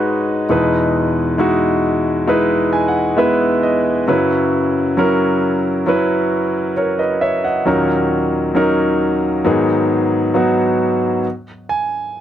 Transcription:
0.00 0.46 G#2 medium
0.00 0.46 D#3 medium
0.00 0.49 G#3 medium
0.00 0.50 D#4 medium
0.00 0.51 F#4 medium
0.00 0.46 B4 medium
0.00 0.52 C#5 medium
0.49 4.04 E2 medium
0.49 4.04 B2 medium
0.49 1.35 G#3 medium
0.49 1.35 D#4 medium
0.49 1.35 E4 medium
0.49 1.36 B4 medium
1.38 2.24 G#3 medium
1.38 2.24 D#4 medium
1.38 2.25 E4 medium
1.38 2.25 F#4 medium
2.27 3.13 G#3 medium
2.27 3.13 D#4 medium
2.27 3.14 E4 medium
2.27 3.14 B4 medium
2.73 2.87 G#5 medium
2.88 3.16 F#5 medium
3.17 4.03 G#3 medium
3.17 4.03 B3 medium
3.17 4.03 E4 medium
3.17 4.04 B4 medium
3.17 3.60 E5 medium
3.63 4.05 D#5 medium
4.08 7.62 F#2 medium
4.08 7.63 C#3 medium
4.08 4.93 F#3 medium
4.08 4.93 C#4 medium
4.08 4.93 E4 medium
4.08 4.94 B4 medium
4.97 5.82 F#3 medium
4.97 5.83 C#4 medium
4.97 5.83 E4 medium
4.97 5.83 A#4 medium
5.86 6.72 F#3 medium
5.86 6.72 C#4 medium
5.86 6.73 E4 medium
5.86 6.73 B4 medium
6.77 6.99 A#4 soft
6.77 6.98 C#5 medium
6.99 7.21 B4 soft
6.99 7.20 D#5 medium
7.21 7.43 C#5 medium
7.21 7.43 E5 medium
7.44 7.87 D#5 soft
7.44 7.87 F#5 medium
7.65 9.41 D#2 medium
7.65 9.41 A#2 medium
7.65 8.51 F#3 medium
7.65 8.51 C#4 medium
7.65 8.52 D#4 medium
7.65 8.52 A#4 medium
8.55 9.40 F#3 medium
8.55 9.41 C#4 medium
8.55 9.41 D#4 medium
8.55 9.41 A#4 medium
9.44 11.21 G#2 medium
9.44 11.21 D#3 medium
9.44 10.30 F#3 medium
9.44 10.31 B3 medium
9.44 10.31 D#4 medium
9.44 10.31 G#4 medium
10.34 11.20 F#3 medium
10.34 11.20 B3 medium
10.34 11.20 D#4 medium
10.34 11.21 F#4 medium
11.69 12.21 G#5 medium

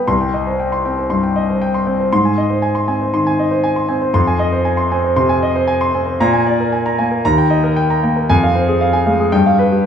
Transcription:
0.00 0.10 B4 soft
0.00 0.10 B5 medium
0.08 1.06 C2 medium
0.08 0.28 C6 medium
0.21 0.41 G5 soft
0.34 0.54 D#5 soft
0.47 0.67 C5 soft
0.60 0.79 G5 soft
0.72 0.92 C6 medium
0.85 1.05 C4 soft
0.85 1.05 G5 soft
0.98 1.18 C5 soft
1.10 1.30 G2 soft
1.10 1.30 C6 medium
1.23 1.43 G5 soft
1.36 1.55 D#5 medium
1.49 1.69 C5 soft
1.62 1.81 G5 medium
1.74 1.94 C6 medium
1.87 2.07 C4 soft
1.87 2.07 G5 soft
2.00 2.12 C5 soft
2.13 3.10 G#2 medium
2.13 2.32 C6 medium
2.25 2.45 G#5 soft
2.38 2.57 D#5 medium
2.50 2.70 C5 soft
2.62 2.82 G#5 medium
2.75 2.95 C6 medium
2.88 3.08 C4 soft
2.88 3.08 G#5 medium
3.01 3.21 C5 soft
3.14 3.34 D#3 soft
3.14 3.34 C6 medium
3.27 3.46 G#5 medium
3.39 3.59 D#5 medium
3.51 3.71 C5 medium
3.64 3.84 G#5 medium
3.76 3.97 C6 medium
3.89 4.09 C4 soft
3.89 4.09 G#5 medium
4.02 4.15 C5 soft
4.14 5.14 F2 medium
4.14 4.35 C6 medium
4.27 4.48 G#5 medium
4.39 4.60 D#5 medium
4.52 4.73 C5 medium
4.65 4.86 G#5 medium
4.77 4.99 C6 medium
4.91 5.12 C4 medium
4.91 5.12 G#5 medium
5.04 5.25 C5 medium
5.16 5.37 C3 medium
5.16 5.37 C6 medium
5.29 5.50 G#5 medium
5.43 5.63 D#5 medium
5.56 5.76 C5 medium
5.67 5.89 G#5 medium
5.81 6.02 C6 medium
5.95 6.15 C4 soft
5.95 6.16 G#5 medium
6.06 6.20 C5 medium
6.20 7.21 A#2 medium
6.20 6.41 A#5 medium
6.33 6.54 G#5 medium
6.47 6.67 D5 medium
6.60 6.81 A#4 medium
6.72 6.93 G#5 medium
6.86 7.07 A#5 medium
6.99 7.20 A#3 soft
6.99 7.19 G#5 medium
7.12 7.25 A#4 soft
7.25 8.26 D#2 medium
7.25 7.46 A#5 medium
7.38 7.59 G5 medium
7.50 7.71 D#5 medium
7.64 7.85 A#4 medium
7.76 7.98 G5 medium
7.90 8.11 A#5 medium
8.03 8.24 A#3 soft
8.03 8.24 G5 medium
8.16 8.29 A#4 medium
8.30 9.30 F2 medium
8.30 8.50 G#5 medium
8.43 8.64 F5 medium
8.55 8.76 C5 medium
8.68 8.89 G#4 medium
8.81 9.02 F5 medium
8.93 9.14 G#5 medium
9.06 9.28 G#3 medium
9.06 9.27 F5 medium
9.20 9.33 G#4 soft
9.32 9.86 G2 medium
9.32 9.54 G5 medium
9.46 9.67 F5 medium
9.59 9.80 B4 medium
9.72 9.86 G4 medium

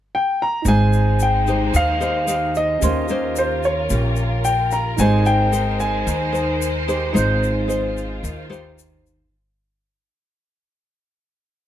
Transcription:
0.15 0.41 G5 medium
0.42 0.66 A#5 medium
0.62 1.70 G#1 loud
0.62 2.77 D#4 soft
0.62 2.80 C5 medium
0.62 2.79 C5 soft
0.62 shaker medium
0.66 2.80 G#3 medium
0.66 1.72 G#3 medium
0.66 2.80 D#4 medium
0.66 1.43 D#4 soft
0.66 1.44 C5 medium
0.66 1.23 G#5 medium
0.66 2.80 G6 medium
0.93 shaker soft
1.20 1.72 G5 medium
1.20 shaker medium
1.47 1.97 D#4 medium
1.47 1.97 G4 medium
1.47 1.97 C5 medium
1.47 shaker soft
1.74 2.78 D#2 loud
1.74 2.80 D#3 soft
1.74 2.52 F5 medium
1.74 shaker medium
2.00 2.23 D#4 medium
2.00 2.24 G4 medium
2.00 2.24 C5 medium
2.00 shaker soft
2.27 2.80 D#4 medium
2.27 2.80 G4 medium
2.27 2.80 C5 medium
2.27 shaker medium
2.55 3.40 D#5 loud
2.55 shaker soft
2.79 3.87 D#2 medium
2.79 3.88 D#3 medium
2.79 4.93 C#4 soft
2.79 3.05 C#4 medium
2.79 4.97 F4 medium
2.79 4.95 G4 soft
2.79 3.05 G4 medium
2.79 7.11 A#4 medium
2.79 shaker medium
2.83 3.05 C5 medium
2.83 4.97 F5 medium
2.83 4.96 C6 soft
3.08 3.87 C#4 medium
3.08 3.87 G4 medium
3.08 3.87 C5 medium
3.08 shaker soft
3.36 3.65 C5 medium
3.36 shaker medium
3.63 4.48 C#5 medium
3.63 shaker soft
3.90 4.95 A#1 medium
3.90 4.97 A#2 soft
3.90 4.95 C#4 soft
3.90 4.95 G4 medium
3.90 shaker medium
4.16 shaker soft
4.45 4.73 G5 medium
4.45 shaker medium
4.71 5.00 A#5 medium
4.71 shaker soft
4.96 6.03 G#1 medium
4.96 9.28 G#3 medium
4.96 6.05 G#3 medium
4.96 7.10 D#4 soft
4.96 5.49 D#4 medium
4.96 5.49 G4 soft
4.96 9.28 C5 medium
4.96 7.12 C5 soft
4.96 5.50 C5 medium
4.96 5.27 G#5 loud
4.96 shaker medium
5.02 7.13 G6 medium
5.26 5.77 G5 loud
5.26 shaker soft
5.52 6.30 D#4 soft
5.52 6.30 C5 medium
5.52 shaker medium
5.80 8.74 G#5 medium
5.80 shaker soft
6.07 7.11 D#2 medium
6.07 7.12 D#3 soft
6.07 shaker medium
6.32 6.83 D#4 medium
6.32 6.83 C5 medium
6.32 shaker soft
6.62 shaker medium
6.88 7.11 D#4 medium
6.88 7.11 G4 medium
6.88 7.11 C5 medium
6.88 shaker soft
7.13 8.19 G#1 medium
7.13 8.20 G#3 medium
7.13 9.27 D#4 medium
7.13 7.49 D#4 medium
7.13 9.29 F4 medium
7.13 7.50 C5 medium
7.13 9.28 C5 medium
7.13 shaker medium
7.19 9.30 G6 medium
7.43 shaker soft
7.68 8.45 D#4 medium
7.68 8.46 C5 medium
7.68 shaker medium
7.97 shaker soft
8.23 9.28 D#2 medium
8.23 9.29 D#3 soft
8.23 shaker medium
8.49 9.27 D#4 medium
8.49 9.27 G4 medium
8.49 9.27 C5 medium
8.49 shaker soft
8.79 shaker medium
9.06 shaker soft

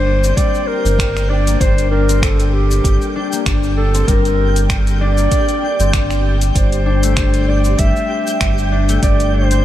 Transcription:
0.00 0.33 G1 loud
0.00 0.36 G3 medium
0.00 1.47 A#3 medium
0.00 0.23 C4 medium
0.00 9.65 G4 medium
0.00 0.38 C5 loud
0.00 9.65 G5 medium
0.06 1.29 D4 medium
0.24 2.09 C4 medium
0.24 cabasa medium
0.36 2.21 G3 medium
0.36 0.69 D5 loud
0.36 kick loud
0.36 closed hi-hat medium
0.36 cabasa medium
0.55 cabasa soft
0.67 1.31 A#4 loud
0.85 1.57 G1 medium
0.85 cabasa medium
0.99 finger snap loud
0.99 kick loud
0.99 closed hi-hat medium
0.99 cabasa medium
1.17 finger snap soft
1.17 cabasa soft
1.29 1.60 D4 loud
1.29 1.62 D5 loud
1.47 3.32 A#3 medium
1.47 closed hi-hat soft
1.47 cabasa medium
1.60 2.80 G1 loud
1.60 1.91 D4 medium
1.60 1.90 C5 loud
1.60 kick loud
1.60 closed hi-hat medium
1.60 cabasa medium
1.78 closed hi-hat soft
1.78 cabasa soft
1.91 3.15 D4 medium
1.91 2.23 A#4 medium
2.09 3.94 C4 medium
2.09 closed hi-hat soft
2.09 cabasa medium
2.22 4.07 G3 medium
2.22 2.47 A4 loud
2.22 finger snap loud
2.22 kick loud
2.22 closed hi-hat medium
2.22 cabasa medium
2.40 closed hi-hat soft
2.40 cabasa soft
2.47 2.55 A4 medium
2.53 3.15 G4 medium
2.71 cabasa medium
2.84 2.98 G1 medium
2.84 kick loud
2.84 closed hi-hat medium
2.84 cabasa medium
3.02 cabasa soft
3.16 3.46 D4 medium
3.32 5.18 A#3 medium
3.32 cabasa medium
3.46 4.04 G1 loud
3.46 3.77 D4 medium
3.46 finger snap loud
3.46 kick loud
3.46 closed hi-hat medium
3.46 cabasa medium
3.63 cabasa soft
3.77 5.01 D4 medium
3.77 4.09 A4 loud
3.94 5.79 C4 medium
3.94 closed hi-hat soft
3.94 cabasa medium
4.08 5.28 G1 loud
4.08 5.92 G3 medium
4.08 4.70 A#4 loud
4.08 kick loud
4.08 closed hi-hat medium
4.08 cabasa medium
4.25 closed hi-hat soft
4.25 cabasa soft
4.56 closed hi-hat soft
4.56 cabasa medium
4.70 finger snap medium
4.70 kick loud
4.70 closed hi-hat medium
4.70 cabasa medium
4.87 closed hi-hat soft
4.87 cabasa soft
5.01 5.32 D4 loud
5.01 6.21 D5 loud
5.17 7.09 A#3 medium
5.17 cabasa medium
5.32 5.62 D4 medium
5.32 kick loud
5.32 closed hi-hat medium
5.32 cabasa medium
5.49 closed hi-hat soft
5.49 cabasa soft
5.63 6.86 D4 medium
5.80 6.51 G1 medium
5.80 7.65 C4 medium
5.80 closed hi-hat soft
5.80 cabasa medium
5.93 6.60 G3 medium
5.93 finger snap loud
5.93 kick loud
5.93 closed hi-hat medium
5.93 cabasa medium
6.11 finger snap soft
6.11 cabasa soft
6.41 closed hi-hat soft
6.41 cabasa medium
6.55 7.75 G1 loud
6.55 7.50 C5 medium
6.55 kick loud
6.55 closed hi-hat medium
6.55 cabasa medium
6.72 closed hi-hat soft
6.72 cabasa soft
6.86 7.17 D4 loud
7.03 8.89 A3 medium
7.03 closed hi-hat soft
7.03 cabasa medium
7.17 7.48 D4 medium
7.17 finger snap medium
7.17 kick loud
7.17 closed hi-hat medium
7.17 cabasa medium
7.34 closed hi-hat soft
7.34 cabasa soft
7.48 8.71 D4 medium
7.48 7.80 D5 loud
7.64 9.51 C4 medium
7.64 cabasa medium
7.79 7.93 G1 medium
7.79 9.64 G3 medium
7.79 8.72 E5 loud
7.79 kick loud
7.79 closed hi-hat medium
7.79 cabasa medium
7.96 cabasa soft
8.27 cabasa medium
8.41 8.99 G1 loud
8.41 finger snap loud
8.41 kick loud
8.41 closed hi-hat medium
8.41 cabasa medium
8.58 cabasa soft
8.72 9.02 D4 loud
8.89 9.65 A3 medium
8.89 closed hi-hat soft
8.89 cabasa medium
9.03 9.65 G1 loud
9.03 9.34 D4 medium
9.03 9.35 D5 medium
9.03 kick loud
9.03 closed hi-hat medium
9.03 cabasa soft
9.20 closed hi-hat soft
9.20 cabasa soft
9.34 9.65 D4 medium
9.34 9.65 C5 medium
9.51 9.65 C4 medium
9.51 closed hi-hat soft
9.51 cabasa medium

